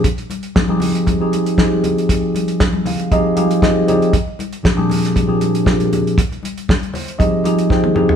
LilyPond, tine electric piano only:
\new Staff \with { instrumentName = "Tine electric piano" } { \time 4/4 \key bes \mixolydian \tempo 4 = 118 << { r1 | r4. f''8 ees''8 f''8 ees''8 d''8 | r1 | r4. c''8 ees''4 g''4 | } \\ { r4 <f c' ees' g' aes'>16 <f c' ees' g' aes'>8. r16 <f c' ees' g' aes'>8 r16 <f c' ees' g' aes'>4~ | <f c' ees' g' aes'>8 r4. <f c' ees' g' aes'>8 <f c' ees' g' aes'>8 <f c' ees' g' aes'>8 <f c' ees' g' aes'>8 | r4 <bes, f c' d' g' aes'>16 <bes, f c' d' g' aes'>8. r16 <bes, f c' d' g' aes'>8 r16 <bes, f c' d' g' aes'>4 | r2 <f c' ees' g' aes'>8 <f c' ees' g' aes'>8 <f c' ees' g' aes'>8 <f c' ees' g' aes'>8 | } >> }